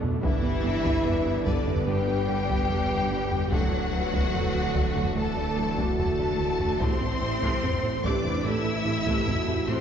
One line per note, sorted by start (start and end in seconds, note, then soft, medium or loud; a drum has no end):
0.00 0.19 B1 medium
0.00 0.25 B1 medium
0.00 0.16 B2 medium
0.00 0.19 A3 medium
0.00 0.23 A3 medium
0.00 0.22 B3 medium
0.00 0.23 B3 medium
0.00 0.22 D4 medium
0.00 0.23 A4 medium
0.00 0.14 A4 medium
0.00 0.22 D5 medium
0.00 taiko low medium
0.22 3.48 G1 medium
0.22 3.54 G1 medium
0.22 0.36 G2 loud
0.22 3.48 D3 medium
0.22 1.42 E3 medium
0.22 0.35 G3 loud
0.22 0.42 G3 medium
0.22 3.52 G3 medium
0.22 3.48 B3 medium
0.22 0.42 D4 medium
0.22 3.48 D4 medium
0.22 1.42 E4 loud
0.22 1.03 G4 medium
0.22 3.48 D5 medium
0.22 1.43 E5 loud
0.22 taiko loud
0.43 0.57 G2 medium
0.43 0.56 B3 medium
0.43 0.64 B3 medium
0.43 0.64 G4 medium
0.64 0.78 G2 medium
0.64 0.85 G3 medium
0.64 0.76 B3 medium
0.64 0.85 D4 medium
0.84 0.98 G2 medium
0.84 0.97 G3 medium
0.84 1.05 B3 medium
0.84 1.05 G4 medium
0.84 taiko medium
1.05 1.18 G2 medium
1.05 1.24 G3 medium
1.05 1.17 B3 medium
1.05 1.25 D4 medium
1.05 1.46 B4 medium
1.05 taiko low medium
1.26 1.38 G2 medium
1.26 1.38 B3 medium
1.26 1.46 B3 medium
1.26 1.46 G4 medium
1.45 1.59 G2 medium
1.45 1.87 D3 medium
1.45 1.67 G3 medium
1.45 1.59 G3 medium
1.45 1.87 D4 medium
1.45 1.67 D4 medium
1.45 1.87 A4 medium
1.45 1.88 D5 medium
1.45 taiko medium
1.67 1.80 G3 medium
1.67 1.87 B3 medium
1.67 1.79 D4 medium
1.67 1.87 G4 medium
1.67 taiko low medium
1.86 2.00 G2 medium
1.86 2.06 G3 medium
1.86 3.52 G3 medium
1.86 2.00 G3 loud
1.86 2.06 D4 medium
1.86 3.49 G4 loud
1.86 2.51 B4 medium
1.86 3.49 G5 loud
2.08 2.20 G2 medium
2.08 2.28 B3 medium
2.08 2.28 G4 medium
2.08 2.20 G4 medium
2.28 2.41 G2 medium
2.28 2.49 G3 medium
2.28 2.41 B3 medium
2.28 2.49 D4 medium
2.49 2.62 G2 loud
2.49 2.61 G3 medium
2.49 2.69 B3 medium
2.49 2.69 G4 medium
2.49 taiko medium
2.68 2.83 G2 medium
2.68 2.88 G3 medium
2.68 2.82 B3 medium
2.68 2.88 D4 medium
2.68 3.49 G4 medium
2.68 taiko low medium
2.90 3.03 G2 medium
2.90 3.11 B3 medium
2.90 3.02 G4 medium
2.90 3.11 G4 medium
2.90 taiko low soft
3.11 3.24 G2 medium
3.11 3.31 G3 medium
3.11 3.23 G3 medium
3.11 3.31 D4 medium
3.30 3.44 G2 medium
3.30 3.51 B3 medium
3.30 3.51 G4 medium
3.30 3.44 G4 medium
3.30 taiko low soft
3.52 6.83 D1 medium
3.52 3.64 D2 loud
3.52 6.77 D2 medium
3.52 3.64 D3 medium
3.52 6.64 E3 medium
3.52 6.80 E3 medium
3.52 5.13 F#3 medium
3.52 3.71 F#3 medium
3.52 6.64 A3 medium
3.52 6.80 A3 medium
3.52 3.71 E4 medium
3.52 6.80 E4 medium
3.52 5.13 F#4 loud
3.52 3.93 A4 medium
3.52 6.77 D5 medium
3.52 5.13 F#5 loud
3.52 taiko loud
3.72 3.85 D2 medium
3.72 3.85 F#3 medium
3.72 3.93 A3 medium
3.72 3.93 D4 medium
3.93 4.05 D2 medium
3.93 4.05 F#3 medium
3.93 4.14 F#3 medium
3.93 4.14 E4 medium
3.93 4.34 B4 medium
4.14 4.26 D2 medium
4.14 4.26 D3 medium
4.14 4.34 A3 medium
4.14 4.34 D4 medium
4.14 taiko medium
4.34 4.47 D2 medium
4.34 4.53 F#3 medium
4.34 4.46 F#3 medium
4.34 4.53 E4 medium
4.34 5.15 A4 medium
4.34 taiko low medium
4.54 4.67 D2 medium
4.54 4.67 F#3 medium
4.54 4.75 A3 medium
4.54 4.75 D4 medium
4.75 4.88 D2 medium
4.75 4.87 D3 medium
4.75 4.96 F#3 medium
4.75 4.96 E4 medium
4.75 taiko medium
4.95 5.08 D3 medium
4.95 5.08 A3 medium
4.95 5.16 A3 medium
4.95 5.16 D4 medium
4.95 taiko low soft
5.16 5.28 D2 loud
5.16 5.29 D3 medium
5.16 5.35 F#3 medium
5.16 5.98 A3 medium
5.16 5.35 E4 medium
5.16 5.56 A4 medium
5.16 5.98 A4 medium
5.16 5.97 A5 loud
5.37 5.49 D2 medium
5.37 5.57 A3 medium
5.37 5.57 D4 medium
5.37 5.49 D4 medium
5.57 5.69 D2 medium
5.57 5.70 F#3 medium
5.57 5.78 F#3 medium
5.57 5.78 E4 medium
5.57 6.81 F#4 medium
5.77 5.90 D2 loud
5.77 5.90 D3 loud
5.77 5.98 A3 medium
5.77 5.98 D4 medium
5.77 taiko medium
5.98 6.11 D2 medium
5.98 6.11 F#3 medium
5.98 6.17 F#3 medium
5.98 6.79 A3 medium
5.98 6.17 E4 medium
5.98 6.79 A4 medium
5.98 6.79 A5 loud
5.98 taiko low medium
6.19 6.31 D2 medium
6.19 6.40 A3 medium
6.19 6.31 D4 medium
6.19 6.40 D4 medium
6.19 taiko low soft
6.39 6.52 D2 medium
6.39 6.52 D3 medium
6.39 6.60 F#3 medium
6.39 6.60 E4 medium
6.60 6.72 D2 medium
6.60 6.79 A3 medium
6.60 6.73 D4 medium
6.60 6.81 D4 medium
6.60 taiko low soft
6.80 6.89 A1 medium
6.80 9.81 A1 medium
6.80 6.92 A2 medium
6.80 6.99 C3 medium
6.80 9.81 E3 medium
6.80 6.99 A3 medium
6.80 6.93 A3 medium
6.80 9.81 A3 medium
6.80 8.04 C4 medium
6.80 9.81 C4 medium
6.80 7.61 E4 medium
6.80 9.81 E4 medium
6.80 8.04 C5 loud
6.80 8.04 C6 loud
6.80 taiko medium
7.01 7.09 A1 medium
7.01 7.13 A2 medium
7.01 7.10 A3 medium
7.01 7.13 C4 medium
7.01 7.10 E4 medium
7.21 7.30 A1 medium
7.21 7.34 A2 medium
7.21 7.30 E3 soft
7.21 7.34 C4 medium
7.21 7.30 C4 medium
7.42 7.50 A1 medium
7.42 7.54 A2 medium
7.42 7.61 C3 medium
7.42 7.54 A3 medium
7.42 7.62 A3 medium
7.42 taiko medium
7.63 7.71 A1 medium
7.63 7.75 A2 medium
7.63 7.71 A3 medium
7.63 7.75 C4 medium
7.63 7.72 E4 soft
7.63 8.04 C5 medium
7.63 taiko low medium
7.83 7.92 A1 medium
7.83 7.95 A2 medium
7.83 7.92 E3 medium
7.83 7.96 C4 medium
7.83 7.92 C4 medium
8.03 8.12 A1 medium
8.03 8.16 A2 medium
8.03 8.23 C3 medium
8.03 8.16 A3 medium
8.03 8.23 A3 medium
8.03 8.44 D4 medium
8.03 8.45 B4 medium
8.03 8.44 D5 medium
8.03 8.45 D6 medium
8.03 taiko medium
8.24 8.33 A1 medium
8.24 8.37 A3 medium
8.24 8.34 A3 medium
8.24 8.37 E4 medium
8.24 8.34 E4 medium
8.24 taiko low soft
8.44 8.53 A1 medium
8.44 8.57 A2 medium
8.44 8.64 C3 medium
8.44 8.57 A3 medium
8.44 8.64 A3 medium
8.44 9.68 E4 medium
8.44 8.85 A4 medium
8.44 9.68 E5 medium
8.44 9.68 E6 loud
8.65 8.74 A1 medium
8.65 8.77 A2 medium
8.65 8.75 A3 medium
8.65 8.75 E4 medium
8.65 8.78 A4 medium
8.85 8.95 A1 medium
8.85 8.98 A2 medium
8.85 8.95 E3 medium
8.85 8.98 C4 medium
8.85 8.95 C4 medium
8.85 9.27 G4 medium
9.06 9.15 A1 medium
9.06 9.18 A2 medium
9.06 9.26 C3 medium
9.06 9.19 A3 medium
9.06 9.26 A3 medium
9.06 taiko medium
9.27 9.35 A1 medium
9.27 9.40 A2 medium
9.27 9.36 A3 medium
9.27 9.39 C4 medium
9.27 9.36 E4 medium
9.27 9.68 F#4 medium
9.27 taiko low medium
9.47 9.55 A1 medium
9.47 9.60 A2 medium
9.47 9.57 E3 medium
9.47 9.57 C4 medium
9.47 9.60 A4 medium
9.47 taiko low soft
9.68 9.76 A1 medium
9.68 9.81 A2 medium
9.68 9.81 C3 medium
9.68 9.81 A3 medium
9.68 9.81 C4 medium
9.68 9.81 E4 medium
9.68 9.81 C5 medium
9.68 9.81 C6 medium